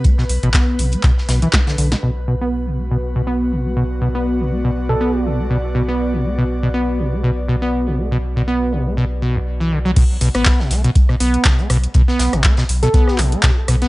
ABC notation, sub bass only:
X:1
M:4/4
L:1/16
Q:"Swing 16ths" 1/4=121
K:Bm
V:1 name="Sub bass" clef=bass
z2 B,,, A,,, z2 B,,, z3 B,,, z3 B,,, z | B,,,16- | B,,,16- | B,,,16- |
B,,,16 | z2 B,,, A,,, z2 B,,, z3 B,,, z3 B,,, z | z2 B,,, A,,, z2 B,,, z3 B,,, z3 B,,, z |]